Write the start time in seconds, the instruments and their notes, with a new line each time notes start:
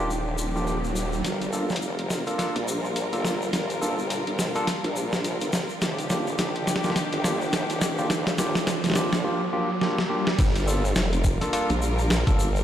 Already playing: wobble bass D#1, string section D#3 D4 F4 G4, riser
0.10 shaker
0.38 shaker
0.56 tine electric piano A#3 D4 F4 G4, shaker
0.67 shaker
0.84 shaker
0.96 shaker
1.13 shaker
1.24 wobble bass G1, string section G3 F4 A#4, snare, closed hi-hat, riser, shaker
1.42 closed hi-hat, shaker
1.53 tine electric piano A#3 D4 F4 A4, shaker
1.70 snare, shaker
1.76 closed hi-hat
1.81 wobble bass F1, shaker
1.99 closed hi-hat
2.10 snare, shaker
2.27 tine electric piano A#3 D4 F4 A4, closed hi-hat, shaker
2.38 tine electric piano A#3 D4 F4 A4, snare, closed hi-hat, shaker
2.56 wobble bass A#1, closed hi-hat
2.68 shaker
2.85 shaker
2.96 closed hi-hat, shaker
3.13 wobble bass G1, tine electric piano A#3 D4 F4 A4, closed hi-hat, shaker
3.25 snare, shaker
3.42 shaker
3.53 wobble bass G1, snare, closed hi-hat, shaker
3.70 closed hi-hat, shaker
3.81 wobble bass G1, tine electric piano A#3 D4 F4 A4, shaker
3.99 shaker
4.10 closed hi-hat, shaker
4.27 wobble bass G1, closed hi-hat
4.39 snare, shaker
4.55 tine electric piano A#3 D4 F4 A4, closed hi-hat, shaker
4.67 snare, closed hi-hat, shaker
4.84 wobble bass A#1, closed hi-hat
4.96 shaker
5.13 snare, shaker
5.24 closed hi-hat, shaker
5.41 wobble bass G1, closed hi-hat, shaker
5.53 snare, shaker
5.69 shaker
5.81 wobble bass D#1, string section D#3 D4 G4, snare, closed hi-hat, shaker
5.98 closed hi-hat, shaker
6.10 tine electric piano A#3 D4 F4 G4, snare, shaker
6.27 shaker
6.38 wobble bass A#1, snare, closed hi-hat, shaker
6.56 closed hi-hat
6.67 snare, shaker
6.76 snare, closed hi-hat
6.84 tine electric piano A#3 D4 F4 G4, snare, shaker
6.90 snare
6.96 snare, closed hi-hat, shaker
7.13 wobble bass G1, closed hi-hat
7.24 tine electric piano A#3 D4 F4 G4, snare, shaker
7.41 shaker
7.53 snare, closed hi-hat, shaker
7.70 wobble bass D#1, closed hi-hat, shaker
7.81 snare, shaker
7.98 tine electric piano A#3 D4 F4 G4, shaker
8.10 wobble bass D#1, snare, closed hi-hat, shaker
8.27 snare, closed hi-hat, shaker
8.38 wobble bass D#1, tine electric piano A#3 D4 F4 G4, snare, shaker
8.55 snare, closed hi-hat, shaker
8.67 snare, closed hi-hat, shaker
8.84 wobble bass D#1, snare, closed hi-hat, shaker
8.86 snare
8.90 snare
8.92 snare
8.94 snare, shaker
8.96 tine electric piano A#3 D4 F4 G4, snare
9.13 wobble bass A#1, snare, closed hi-hat, shaker
9.24 tine electric piano A#3 D4 F4 G4
9.53 tine electric piano A#3 D4 F4 G4
9.81 tine electric piano A#3 D4 F4 G4, snare
9.98 snare
10.10 tine electric piano A#3 D4 F4 G4
10.27 snare
10.39 wobble bass G1, string section G3 F4 A#4, kick, closed hi-hat, crash, shaker
10.56 closed hi-hat, shaker
10.67 tine electric piano A#3 D4 F4 A4, shaker
10.85 shaker
10.96 wobble bass F1, snare, closed hi-hat, shaker
11.13 closed hi-hat, shaker
11.24 kick, shaker
11.41 tine electric piano A#3 D4 F4 A4, snare, closed hi-hat, shaker
11.53 tine electric piano A#3 D4 F4 A4, closed hi-hat, shaker
11.70 wobble bass A#1, closed hi-hat, shaker
11.82 shaker
11.99 shaker
12.10 snare, closed hi-hat, shaker
12.27 wobble bass G1, tine electric piano A#3 D4 F4 A4, kick, closed hi-hat, shaker
12.39 shaker
12.56 shaker